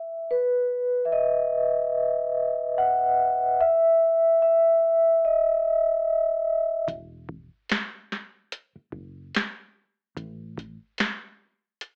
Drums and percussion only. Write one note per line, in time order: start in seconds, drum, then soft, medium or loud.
6.88 kick medium
6.88 closed hi-hat medium
7.29 kick medium
7.69 snare loud
7.69 closed hi-hat medium
8.12 snare soft
8.52 closed hi-hat medium
8.92 kick medium
9.35 snare loud
9.35 closed hi-hat medium
10.17 kick loud
10.17 closed hi-hat medium
10.58 kick medium
10.58 closed hi-hat soft
10.98 snare medium
10.98 closed hi-hat medium
11.81 closed hi-hat medium